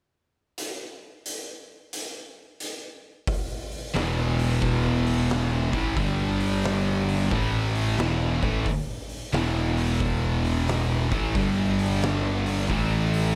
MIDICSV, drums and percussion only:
0, 0, Header, 1, 2, 480
1, 0, Start_track
1, 0, Key_signature, 1, "minor"
1, 0, Tempo, 672646
1, 415, Time_signature, 4, 2, 24, 8
1, 9528, End_track
2, 0, Start_track
2, 0, Title_t, "Drums"
2, 413, Note_on_c, 9, 42, 71
2, 484, Note_off_c, 9, 42, 0
2, 897, Note_on_c, 9, 42, 61
2, 969, Note_off_c, 9, 42, 0
2, 1378, Note_on_c, 9, 42, 64
2, 1449, Note_off_c, 9, 42, 0
2, 1858, Note_on_c, 9, 42, 57
2, 1929, Note_off_c, 9, 42, 0
2, 2337, Note_on_c, 9, 36, 124
2, 2337, Note_on_c, 9, 46, 91
2, 2408, Note_off_c, 9, 36, 0
2, 2408, Note_off_c, 9, 46, 0
2, 2651, Note_on_c, 9, 46, 53
2, 2722, Note_off_c, 9, 46, 0
2, 2817, Note_on_c, 9, 46, 79
2, 2829, Note_on_c, 9, 38, 111
2, 2888, Note_off_c, 9, 46, 0
2, 2900, Note_off_c, 9, 38, 0
2, 3134, Note_on_c, 9, 46, 65
2, 3205, Note_off_c, 9, 46, 0
2, 3296, Note_on_c, 9, 36, 112
2, 3299, Note_on_c, 9, 46, 87
2, 3368, Note_off_c, 9, 36, 0
2, 3371, Note_off_c, 9, 46, 0
2, 3615, Note_on_c, 9, 46, 55
2, 3686, Note_off_c, 9, 46, 0
2, 3779, Note_on_c, 9, 46, 78
2, 3791, Note_on_c, 9, 38, 109
2, 3850, Note_off_c, 9, 46, 0
2, 3862, Note_off_c, 9, 38, 0
2, 4091, Note_on_c, 9, 36, 102
2, 4096, Note_on_c, 9, 46, 62
2, 4163, Note_off_c, 9, 36, 0
2, 4167, Note_off_c, 9, 46, 0
2, 4258, Note_on_c, 9, 36, 115
2, 4262, Note_on_c, 9, 46, 98
2, 4329, Note_off_c, 9, 36, 0
2, 4333, Note_off_c, 9, 46, 0
2, 4568, Note_on_c, 9, 46, 60
2, 4640, Note_off_c, 9, 46, 0
2, 4737, Note_on_c, 9, 46, 77
2, 4749, Note_on_c, 9, 38, 110
2, 4808, Note_off_c, 9, 46, 0
2, 4820, Note_off_c, 9, 38, 0
2, 5056, Note_on_c, 9, 46, 56
2, 5128, Note_off_c, 9, 46, 0
2, 5151, Note_on_c, 9, 38, 33
2, 5219, Note_on_c, 9, 36, 114
2, 5222, Note_off_c, 9, 38, 0
2, 5223, Note_on_c, 9, 46, 81
2, 5291, Note_off_c, 9, 36, 0
2, 5294, Note_off_c, 9, 46, 0
2, 5531, Note_on_c, 9, 46, 56
2, 5603, Note_off_c, 9, 46, 0
2, 5696, Note_on_c, 9, 46, 75
2, 5708, Note_on_c, 9, 38, 117
2, 5768, Note_off_c, 9, 46, 0
2, 5780, Note_off_c, 9, 38, 0
2, 6013, Note_on_c, 9, 36, 106
2, 6014, Note_on_c, 9, 46, 52
2, 6084, Note_off_c, 9, 36, 0
2, 6085, Note_off_c, 9, 46, 0
2, 6179, Note_on_c, 9, 36, 110
2, 6179, Note_on_c, 9, 46, 88
2, 6250, Note_off_c, 9, 36, 0
2, 6250, Note_off_c, 9, 46, 0
2, 6488, Note_on_c, 9, 46, 53
2, 6560, Note_off_c, 9, 46, 0
2, 6655, Note_on_c, 9, 46, 71
2, 6668, Note_on_c, 9, 38, 107
2, 6727, Note_off_c, 9, 46, 0
2, 6739, Note_off_c, 9, 38, 0
2, 6974, Note_on_c, 9, 46, 60
2, 7045, Note_off_c, 9, 46, 0
2, 7137, Note_on_c, 9, 46, 87
2, 7139, Note_on_c, 9, 36, 110
2, 7208, Note_off_c, 9, 46, 0
2, 7210, Note_off_c, 9, 36, 0
2, 7454, Note_on_c, 9, 46, 55
2, 7526, Note_off_c, 9, 46, 0
2, 7619, Note_on_c, 9, 46, 81
2, 7631, Note_on_c, 9, 38, 106
2, 7691, Note_off_c, 9, 46, 0
2, 7703, Note_off_c, 9, 38, 0
2, 7933, Note_on_c, 9, 36, 106
2, 7933, Note_on_c, 9, 46, 62
2, 8004, Note_off_c, 9, 46, 0
2, 8005, Note_off_c, 9, 36, 0
2, 8100, Note_on_c, 9, 36, 116
2, 8103, Note_on_c, 9, 46, 98
2, 8172, Note_off_c, 9, 36, 0
2, 8174, Note_off_c, 9, 46, 0
2, 8413, Note_on_c, 9, 46, 61
2, 8485, Note_off_c, 9, 46, 0
2, 8578, Note_on_c, 9, 46, 82
2, 8590, Note_on_c, 9, 38, 116
2, 8649, Note_off_c, 9, 46, 0
2, 8661, Note_off_c, 9, 38, 0
2, 8892, Note_on_c, 9, 46, 62
2, 8963, Note_off_c, 9, 46, 0
2, 8991, Note_on_c, 9, 38, 32
2, 9060, Note_on_c, 9, 46, 79
2, 9061, Note_on_c, 9, 36, 103
2, 9063, Note_off_c, 9, 38, 0
2, 9132, Note_off_c, 9, 36, 0
2, 9132, Note_off_c, 9, 46, 0
2, 9374, Note_on_c, 9, 46, 56
2, 9445, Note_off_c, 9, 46, 0
2, 9528, End_track
0, 0, End_of_file